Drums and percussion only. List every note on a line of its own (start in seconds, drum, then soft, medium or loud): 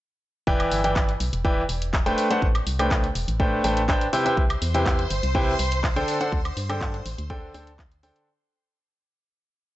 0.47 kick loud
0.60 closed hi-hat medium
0.60 high woodblock medium
0.72 open hi-hat loud
0.84 closed hi-hat medium
0.96 kick loud
0.96 clap loud
1.09 closed hi-hat soft
1.20 open hi-hat loud
1.33 closed hi-hat medium
1.45 kick loud
1.69 open hi-hat loud
1.82 closed hi-hat medium
1.93 kick loud
1.93 clap loud
2.06 closed hi-hat medium
2.18 open hi-hat loud
2.31 closed hi-hat medium
2.42 kick loud
2.55 closed hi-hat medium
2.55 high woodblock medium
2.67 open hi-hat loud
2.79 closed hi-hat medium
2.79 high woodblock medium
2.91 kick loud
2.91 clap loud
3.04 closed hi-hat soft
3.15 open hi-hat loud
3.28 closed hi-hat medium
3.40 kick loud
3.64 open hi-hat loud
3.77 closed hi-hat medium
3.89 kick loud
3.89 clap loud
4.01 closed hi-hat medium
4.13 open hi-hat loud
4.26 closed hi-hat medium
4.37 kick loud
4.50 closed hi-hat soft
4.50 high woodblock medium
4.62 open hi-hat loud
4.74 closed hi-hat medium
4.86 kick loud
4.86 clap loud
4.99 closed hi-hat soft
5.10 open hi-hat loud
5.23 closed hi-hat medium
5.35 kick loud
5.59 open hi-hat loud
5.72 closed hi-hat medium
5.84 kick loud
5.84 clap loud
5.96 closed hi-hat medium
6.08 open hi-hat loud
6.21 closed hi-hat medium
6.32 kick loud
6.45 closed hi-hat soft
6.45 high woodblock medium
6.57 open hi-hat loud
6.70 closed hi-hat medium
6.70 high woodblock medium
6.81 kick loud
6.81 clap loud
6.94 closed hi-hat soft
7.06 open hi-hat loud
7.18 closed hi-hat medium
7.30 kick loud
7.54 open hi-hat loud
7.67 closed hi-hat medium
7.79 kick loud
7.79 clap loud
7.92 closed hi-hat soft
8.03 open hi-hat loud
8.16 closed hi-hat medium